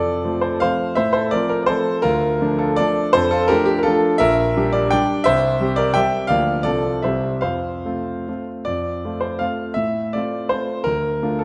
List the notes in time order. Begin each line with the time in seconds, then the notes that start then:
Already playing: F2 A4 D5
0.24 F3 A3 C4
0.41 A4 C5
0.60 F3 A3 C4 C5 F5
0.95 A2 C5 E5
1.13 A4 C5
1.31 F3 A3 C4 A#4 D5
1.49 A#4
1.63 C5 D5
1.68 F3 A3 C4 A4
2.02 D2 F4 A#4
2.41 F3 A3 D4
2.59 F4 A4
2.76 F3 A3 D4 A4 D5
3.13 F2 A4 C5
3.31 F4 A4
3.48 F3 A3 D4 G4 A#4
3.66 G4
3.78 A#4
3.83 F3 A3 D4 F4 A4
4.18 A#1 A#4 E5
4.57 G3 D4 G4
4.73 A#4 D5
4.91 G3 D4 G4 D5 G5
5.24 C2 C5 E5
5.60 G3 C4 G4
5.76 A#4 D5
5.94 G3 C4 G4 E5 G5
6.27 D2 F3 A#3 A#4 D5 F5
6.63 C2 F3 C4 A4 D5
7.02 C2 G3 C4 C5 E5
7.06 G4
7.41 F2 C5 F5
7.85 A3 C4 F4
8.28 A3 C4 F4
8.65 F2 D5
9.05 A3 C4 F4
9.21 C5
9.39 A3 C4 F4 F5
9.74 A2 E5
10.13 A3 C4 F4 D5
10.49 A3 C4 F4 C5
10.84 D2 A#4
11.23 A3 D4 F4
11.39 A4